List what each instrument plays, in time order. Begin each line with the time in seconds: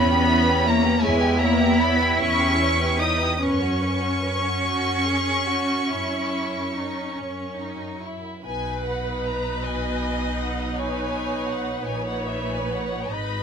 Already playing: double bass section E2, viola section B3, cello section C#4, violin section C#5 B5
0.09 violin section G4 B4
0.28 violin section E4 C#5
0.45 violin section G4 B4
0.64 viola section A#3, violin section E4 C#5 A#5
0.83 violin section G4 B4
0.99 double bass section E2, viola section G#3, violin section E4 C#5 G#5, cello section E4
1.19 violin section G4 B4
1.39 viola section A#3, violin section E4 C#5 A#5
1.57 violin section G4 B4
1.79 viola section B3, violin section E4 C#5 B5
1.98 violin section G4 B4
2.18 double bass section E2, viola section C#4, violin section E4 C#5 C#6
2.38 violin section G4 B4
2.60 violin section E4 C#5
2.81 violin section G4 B4
2.99 viola section D#4, violin section E4 C#5 D#6
3.19 violin section G4 B4
3.39 double bass section F#2, violin section C#4 B4 C#6, viola section C#4, cello section C#4
3.60 violin section F#4 C#5
3.81 violin section C#4 B4
4.01 violin section F#4 C#5
4.24 violin section C#4 B4
4.43 violin section F#4 C#5
4.62 double bass section F#2, violin section F#4
5.05 violin section G#4
5.46 violin section F#4
5.89 double bass section F#2, violin section E4
6.75 violin section D#4
7.16 double bass section F#2, violin section C#4
7.57 violin section D#4
8.01 violin section E4
8.43 double bass section B1, cello section B2, viola section D#4 B4, violin section B4 G#5
8.85 violin section F#5
9.25 violin section A#5
9.60 violin section D#5 G#5
10.39 violin section F#5
10.74 viola section B4, violin section C#5 G#5
11.48 violin section F#5
11.83 double bass section A#1, cello section A#2, violin section B4 G#5, viola section C#5
12.06 violin section F#5
12.26 violin section E5
12.48 violin section G#5
12.70 violin section F#5
13.09 double bass section G#1, cello section G#2, viola section D#4 B4, violin section D#5 B5